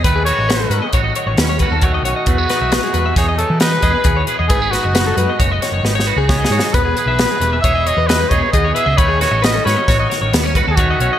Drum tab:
HH |x--x--x--x--x--x--x--x--x--x--|x--x--x--x--x--x--x--x--x--x--|x--x--x--x--x--x--------------|x--x--x--x--x--x--x--x--x--x--|
SD |------o-----------o-----------|---o--o-----o-----o-----------|---o--o--------o--o-o---o-o-o-|------o-----------o-----------|
BD |o-----------o--------o--o-----|o-----------o--------o--o-----|o-----------o-----------o-----|o-----------o--------o--o-----|

HH |x--x--x--x--x--x--x--x--x--x--|
SD |---o--o--o--o--o--o-----------|
BD |o-----------o--------o--o-----|